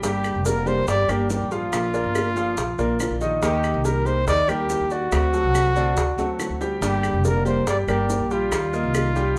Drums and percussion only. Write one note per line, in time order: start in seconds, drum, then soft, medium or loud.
0.03 high bongo medium
0.03 maracas medium
0.24 high bongo soft
0.24 claves medium
0.24 maracas soft
0.45 high bongo medium
0.45 maracas medium
0.67 high bongo soft
0.67 maracas soft
0.87 high bongo medium
0.87 maracas medium
1.09 claves medium
1.09 maracas soft
1.30 high bongo soft
1.30 low bongo medium
1.30 maracas medium
1.51 high bongo soft
1.51 maracas soft
1.73 high bongo medium
1.73 claves medium
1.73 maracas medium
1.94 high bongo soft
1.94 maracas soft
2.15 high bongo medium
2.15 claves medium
2.15 maracas medium
2.36 high bongo soft
2.36 maracas soft
2.57 high bongo medium
2.57 maracas medium
2.79 maracas soft
3.00 high bongo soft
3.00 low bongo medium
3.00 claves medium
3.00 maracas medium
3.21 high bongo soft
3.21 maracas soft
3.42 high bongo medium
3.42 maracas medium
3.64 high bongo soft
3.64 claves medium
3.64 maracas soft
3.85 high bongo medium
3.85 maracas medium
4.06 high bongo soft
4.06 maracas soft
4.27 high bongo medium
4.27 maracas medium
4.49 claves medium
4.49 maracas soft
4.69 high bongo soft
4.69 low bongo medium
4.69 maracas medium
4.90 high bongo soft
4.90 maracas soft
5.12 high bongo medium
5.12 claves medium
5.12 maracas medium
5.33 high bongo soft
5.33 maracas soft
5.55 high bongo medium
5.55 claves medium
5.55 maracas medium
5.76 high bongo soft
5.76 maracas soft
5.97 high bongo medium
5.97 maracas medium
6.18 high bongo medium
6.18 maracas soft
6.39 low bongo medium
6.39 claves medium
6.39 maracas medium
6.61 low bongo medium
6.61 maracas soft
6.82 high bongo medium
6.82 maracas medium
7.03 high bongo soft
7.03 claves medium
7.03 maracas soft
7.25 high bongo medium
7.25 maracas medium
7.46 high bongo soft
7.46 maracas soft
7.67 high bongo medium
7.67 maracas medium
7.88 claves medium
7.88 maracas soft
8.09 high bongo soft
8.09 low bongo medium
8.09 maracas medium
8.31 high bongo soft
8.31 maracas soft
8.52 high bongo medium
8.52 claves medium
8.52 maracas medium
8.73 high bongo soft
8.73 maracas soft
8.94 high bongo medium
8.94 claves medium
8.94 maracas medium
9.16 high bongo soft
9.16 maracas soft